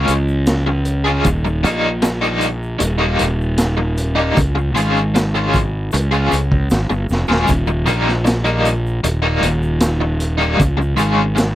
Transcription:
0.00 0.15 G#3 medium
0.00 0.15 C#4 medium
0.00 0.14 F4 medium
0.00 0.14 G#4 medium
0.07 1.22 C#2 medium
0.07 closed hi-hat medium
0.07 shaker medium
0.28 shaker soft
0.47 snare medium
0.47 closed hi-hat medium
0.47 shaker medium
0.66 muted overdriven electric guitar stroke soft
0.85 closed hi-hat medium
0.85 shaker medium
1.04 1.26 G#3 medium
1.04 1.25 C#4 medium
1.04 1.26 F4 medium
1.04 1.25 G#4 medium
1.04 shaker soft
1.24 1.64 D#1 medium
1.24 kick loud
1.24 closed hi-hat medium
1.24 shaker loud
1.45 muted overdriven electric guitar stroke soft
1.45 shaker soft
1.63 2.77 A#1 medium
1.63 1.89 D#3 medium
1.63 1.89 G3 medium
1.63 1.90 A#3 medium
1.63 1.90 D#4 medium
1.63 closed hi-hat medium
1.63 shaker medium
2.02 muted overdriven electric guitar stroke soft
2.02 snare loud
2.02 closed hi-hat medium
2.02 shaker medium
2.21 2.48 D#3 medium
2.21 2.48 G3 medium
2.21 2.48 A#3 medium
2.21 2.48 D#4 medium
2.21 shaker soft
2.41 closed hi-hat medium
2.41 shaker medium
2.63 shaker soft
2.79 3.18 D#1 medium
2.79 muted overdriven electric guitar stroke soft
2.79 closed hi-hat medium
2.79 shaker medium
2.98 3.26 D#3 medium
2.98 3.26 G3 medium
2.98 3.25 A#3 medium
2.98 3.25 D#4 medium
3.19 4.34 D#1 medium
3.19 closed hi-hat medium
3.19 shaker medium
3.41 shaker soft
3.58 snare loud
3.58 closed hi-hat medium
3.58 shaker medium
3.77 muted overdriven electric guitar stroke soft
3.97 closed hi-hat medium
3.97 shaker medium
4.15 4.36 D#3 medium
4.15 4.36 G3 medium
4.15 4.36 A#3 medium
4.15 4.36 D#4 medium
4.15 shaker soft
4.37 4.76 C#2 medium
4.37 kick loud
4.37 closed hi-hat medium
4.37 shaker medium
4.55 muted overdriven electric guitar stroke soft
4.55 shaker soft
4.75 5.89 G#1 medium
4.75 5.01 G#3 medium
4.75 5.01 C#4 medium
4.75 5.01 F4 medium
4.75 5.01 G#4 loud
4.75 closed hi-hat medium
4.75 shaker medium
4.97 shaker soft
5.15 muted overdriven electric guitar stroke soft
5.15 snare medium
5.15 closed hi-hat medium
5.15 shaker medium
5.35 5.60 G#3 medium
5.35 5.60 C#4 medium
5.35 5.60 F4 medium
5.35 5.60 G#4 medium
5.35 shaker soft
5.53 kick medium
5.53 closed hi-hat medium
5.53 shaker medium
5.92 6.30 C#2 medium
5.92 muted overdriven electric guitar stroke soft
5.92 closed hi-hat medium
5.92 shaker medium
6.11 6.38 G#3 medium
6.11 6.37 C#4 medium
6.11 6.37 F4 medium
6.11 6.37 G#4 medium
6.11 shaker soft
6.31 6.69 C#2 medium
6.31 closed hi-hat medium
6.31 shaker medium
6.52 kick medium
6.70 6.88 G#1 medium
6.70 snare loud
6.70 closed hi-hat medium
6.70 shaker medium
6.90 7.08 G1 medium
6.90 muted overdriven electric guitar stroke soft
6.90 shaker soft
7.09 7.27 F1 medium
7.09 snare soft
7.09 shaker medium
7.27 7.47 D#1 medium
7.27 7.49 G#3 medium
7.27 7.49 C#4 medium
7.27 7.48 F4 medium
7.27 7.48 G#4 medium
7.27 snare medium
7.27 shaker soft
7.48 7.87 D#1 medium
7.48 kick medium
7.48 closed hi-hat medium
7.48 shaker medium
7.67 muted overdriven electric guitar stroke soft
7.67 shaker soft
7.86 9.00 A#1 medium
7.86 8.12 D#3 medium
7.86 8.12 G3 medium
7.86 8.12 A#3 medium
7.86 8.12 D#4 medium
7.86 closed hi-hat medium
7.86 shaker medium
8.08 snare soft
8.24 muted overdriven electric guitar stroke soft
8.24 snare loud
8.24 closed hi-hat medium
8.24 shaker medium
8.44 8.71 D#3 medium
8.44 8.71 G3 medium
8.44 8.71 A#3 medium
8.44 8.70 D#4 medium
8.44 shaker soft
8.65 closed hi-hat medium
8.65 shaker medium
8.86 shaker soft
9.04 9.41 D#1 medium
9.04 muted overdriven electric guitar stroke soft
9.04 closed hi-hat medium
9.04 shaker medium
9.22 9.48 D#3 medium
9.22 9.48 G3 medium
9.22 9.48 A#3 medium
9.22 9.48 D#4 medium
9.42 10.56 D#1 medium
9.42 closed hi-hat medium
9.42 shaker medium
9.62 shaker soft
9.80 snare loud
9.80 closed hi-hat medium
9.80 shaker medium
10.01 muted overdriven electric guitar stroke soft
10.20 closed hi-hat medium
10.20 shaker medium
10.38 10.59 D#3 medium
10.38 10.59 G3 medium
10.38 10.59 A#3 medium
10.38 10.58 D#4 medium
10.38 shaker soft
10.60 11.00 C#2 loud
10.60 kick medium
10.60 closed hi-hat medium
10.60 shaker medium
10.77 muted overdriven electric guitar stroke soft
10.81 shaker soft
10.96 11.55 G#1 medium
10.96 11.23 G#3 medium
10.96 11.23 C#4 medium
10.96 11.23 F4 medium
10.96 11.23 G#4 medium
10.96 closed hi-hat medium
10.96 shaker medium
11.36 muted overdriven electric guitar stroke soft
11.36 snare loud
11.36 closed hi-hat medium
11.36 shaker medium

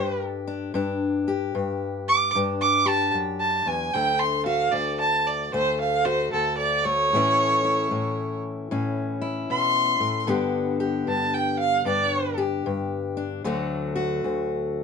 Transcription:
0.00 0.72 G2 medium
0.00 0.47 D4 medium
0.00 0.72 G4 medium
0.00 0.20 D5 loud
0.47 0.75 D4 medium
0.74 1.54 G2 medium
0.74 2.35 D4 medium
1.28 2.84 G4 medium
1.55 2.34 G2 medium
2.08 2.33 D6 loud
2.35 3.14 G2 medium
2.35 3.90 D4 medium
2.61 2.89 D6 loud
2.86 3.90 G4 medium
2.86 3.13 A5 loud
3.14 3.65 F#2 medium
3.41 3.69 A5 medium
3.66 3.93 E2 medium
3.66 3.95 G#5 medium
3.94 4.71 D2 medium
3.94 5.53 A3 medium
3.94 4.21 G5 loud
4.19 4.45 C6 medium
4.46 6.04 F#4 medium
4.46 4.73 F5 medium
4.72 5.52 D2 medium
4.72 4.98 D5 medium
5.00 5.28 A5 loud
5.27 5.52 D5 medium
5.53 6.32 D2 medium
5.53 6.83 A3 medium
5.53 5.79 C5 loud
5.81 6.07 F5 medium
6.05 7.09 F#4 medium
6.05 6.31 C5 loud
6.33 7.11 D2 medium
6.33 6.57 A4 loud
6.58 6.86 D5 medium
6.84 7.12 A3 medium
6.84 8.39 C#5 loud
7.13 7.90 A2 medium
7.13 10.27 E3 medium
7.13 10.27 A3 medium
7.13 8.71 C#4 medium
7.13 7.63 E4 medium
7.65 9.20 E4 medium
7.91 8.70 A2 medium
8.71 9.50 A2 medium
8.71 10.26 C#4 medium
9.22 10.25 E4 medium
9.50 10.00 B2 medium
9.50 10.27 C6 loud
10.00 10.28 A2 medium
10.27 11.06 G2 medium
10.27 13.44 D3 medium
10.27 13.41 B3 medium
10.27 11.86 D4 medium
10.27 10.79 G4 medium
10.80 12.37 G4 medium
11.07 11.84 G2 medium
11.07 11.36 A5 medium
11.34 11.58 G5 medium
11.59 11.85 F5 loud
11.85 12.65 G2 medium
11.85 13.16 D4 medium
11.85 12.36 D5 loud
12.38 13.41 G4 medium
12.66 13.41 G2 medium
13.17 13.46 D4 medium
13.44 14.24 D2 medium
13.44 14.84 D3 medium
13.44 14.84 F#3 medium
13.44 14.84 A3 medium
13.44 13.95 F#4 medium
13.96 14.84 F#4 medium
14.24 14.84 D2 medium

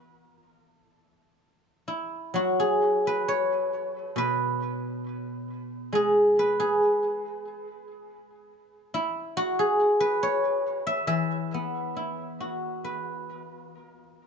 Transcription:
0.00 0.42 B4 soft
0.00 1.34 E5 medium
1.88 4.49 E4 medium
2.34 5.05 F#3 medium
2.34 4.79 F#4 medium
2.60 4.86 G#4 medium
3.07 4.18 B4 medium
3.28 5.19 C#5 medium
4.16 6.79 B2 soft
4.16 6.23 B4 medium
5.93 8.50 G#3 medium
5.93 6.59 G#4 medium
6.39 8.44 B4 medium
6.60 8.86 G#4 medium
8.94 11.55 E4 medium
9.37 11.80 F#4 medium
9.59 11.86 G#4 medium
10.00 12.05 B4 medium
10.23 12.14 C#5 medium
10.87 11.07 E5 medium
11.07 13.73 E3 medium
11.07 14.27 E5 medium
11.54 13.29 B3 soft
11.97 13.74 E4 soft
12.40 14.20 F#4 soft
12.84 14.27 B4 soft

